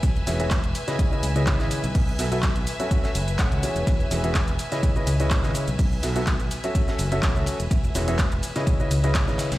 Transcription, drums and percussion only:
0.03 kick, closed hi-hat, ride, shaker
0.16 ride, shaker
0.27 snare, open hi-hat, ride, shaker
0.40 closed hi-hat, shaker
0.51 kick, snare, clap, closed hi-hat, ride, shaker
0.63 closed hi-hat, ride, shaker
0.75 open hi-hat, ride, shaker
0.88 snare, closed hi-hat, shaker
0.99 kick, closed hi-hat, ride, shaker
1.12 shaker
1.23 open hi-hat, ride, shaker
1.36 closed hi-hat, shaker
1.47 kick, snare, clap, closed hi-hat, ride, shaker
1.60 snare, shaker
1.71 open hi-hat, ride, shaker
1.84 closed hi-hat, shaker
1.95 kick, closed hi-hat, open hi-hat, shaker
2.08 shaker
2.19 snare, open hi-hat, ride, shaker
2.32 closed hi-hat, shaker
2.43 kick, snare, clap, closed hi-hat, ride, shaker
2.56 closed hi-hat, ride, shaker
2.67 open hi-hat, ride, shaker
2.80 closed hi-hat, shaker
2.91 kick, closed hi-hat, ride, shaker
3.04 snare, shaker
3.15 open hi-hat, ride, shaker
3.28 closed hi-hat, shaker
3.38 kick, snare, clap, closed hi-hat, ride, shaker
3.52 closed hi-hat, shaker
3.63 open hi-hat, ride, shaker
3.76 closed hi-hat, shaker
3.87 kick, closed hi-hat, ride, shaker
4.00 ride, shaker
4.11 snare, open hi-hat, ride, shaker
4.24 closed hi-hat, shaker
4.35 kick, snare, clap, closed hi-hat, ride, shaker
4.48 closed hi-hat, ride, shaker
4.59 open hi-hat, ride, shaker
4.72 snare, closed hi-hat, shaker
4.83 kick, closed hi-hat, ride, shaker
4.96 shaker
5.07 open hi-hat, ride, shaker
5.20 closed hi-hat, shaker
5.31 kick, snare, clap, closed hi-hat, ride, shaker
5.43 snare, shaker
5.55 open hi-hat, ride, shaker
5.68 closed hi-hat, shaker
5.79 kick, closed hi-hat, open hi-hat, shaker
5.92 shaker
6.03 snare, open hi-hat, ride, shaker
6.16 closed hi-hat, shaker
6.27 kick, snare, clap, closed hi-hat, ride, shaker
6.40 closed hi-hat, ride, shaker
6.51 open hi-hat, ride, shaker
6.64 closed hi-hat, shaker
6.75 kick, closed hi-hat, ride, shaker
6.88 snare, shaker
6.99 open hi-hat, ride, shaker
7.12 closed hi-hat, shaker
7.23 kick, snare, clap, closed hi-hat, ride, shaker
7.36 shaker
7.46 open hi-hat, ride, shaker
7.60 closed hi-hat, shaker
7.71 kick, closed hi-hat, ride, shaker
7.84 ride, shaker
7.95 snare, open hi-hat, ride, shaker
8.08 closed hi-hat, shaker
8.18 kick, snare, clap, closed hi-hat, ride, shaker
8.32 closed hi-hat, ride, shaker
8.43 open hi-hat, ride, shaker
8.55 snare, closed hi-hat, shaker
8.67 kick, closed hi-hat, ride, shaker
8.80 shaker
8.91 open hi-hat, ride, shaker
9.04 closed hi-hat, shaker
9.15 kick, snare, clap, closed hi-hat, ride, shaker
9.28 snare, shaker
9.38 snare, open hi-hat, ride, shaker
9.52 snare, closed hi-hat, ride, shaker

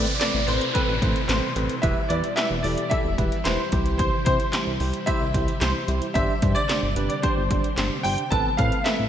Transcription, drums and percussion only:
0.07 closed hi-hat
0.21 snare, clap, closed hi-hat
0.48 open hi-hat
0.61 closed hi-hat
0.75 kick, closed hi-hat
1.02 kick, closed hi-hat
1.16 closed hi-hat
1.29 snare, clap, closed hi-hat
1.56 closed hi-hat
1.70 closed hi-hat
1.83 kick, closed hi-hat
2.10 closed hi-hat
2.24 closed hi-hat
2.37 snare, clap, closed hi-hat
2.64 open hi-hat
2.78 closed hi-hat
2.91 kick, closed hi-hat
3.18 kick, closed hi-hat
3.32 closed hi-hat
3.45 snare, clap, closed hi-hat
3.72 kick, closed hi-hat
3.86 closed hi-hat
3.99 kick, closed hi-hat
4.26 kick, closed hi-hat
4.40 closed hi-hat
4.53 snare, clap, closed hi-hat
4.80 open hi-hat
4.94 closed hi-hat
5.07 kick, closed hi-hat
5.34 kick, closed hi-hat
5.48 closed hi-hat
5.61 snare, clap, closed hi-hat
5.88 closed hi-hat
6.02 closed hi-hat
6.15 kick, closed hi-hat
6.42 kick, closed hi-hat
6.56 closed hi-hat
6.69 snare, clap, closed hi-hat
6.96 closed hi-hat
7.10 closed hi-hat
7.23 kick, closed hi-hat
7.51 kick, closed hi-hat
7.64 closed hi-hat
7.78 snare, clap, closed hi-hat
8.04 open hi-hat
8.18 closed hi-hat
8.32 kick, closed hi-hat
8.59 kick, closed hi-hat
8.72 closed hi-hat
8.86 snare, clap, closed hi-hat

